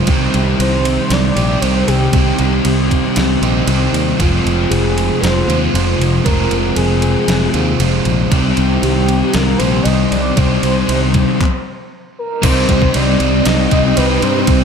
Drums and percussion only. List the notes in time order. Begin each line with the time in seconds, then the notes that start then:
0.07 kick, ride
0.34 ride
0.60 ride
0.85 ride
1.10 snare, ride
1.37 ride
1.62 ride
1.88 ride
2.13 kick, ride
2.39 ride
2.65 ride
2.91 kick, ride
3.16 snare, ride
3.43 ride
3.68 ride
3.94 ride
4.20 kick, ride
4.47 ride
4.72 ride
4.98 ride
5.24 snare, ride
5.50 ride
5.75 ride
6.01 ride
6.26 kick, ride
6.51 ride
6.76 ride
7.02 ride
7.28 snare, ride
7.54 ride
7.80 ride
8.05 ride
8.32 kick, ride
8.57 ride
8.83 ride
9.09 ride
9.33 snare, ride
9.60 ride
9.85 ride
10.12 snare, ride
10.37 kick, ride
10.63 ride
10.89 ride
11.14 kick, ride
11.41 kick, clap
12.43 kick, crash, ride
12.69 kick, ride
12.82 kick
12.94 ride
13.20 ride
13.45 snare, ride
13.71 kick, ride
13.97 ride
14.22 ride
14.47 kick, ride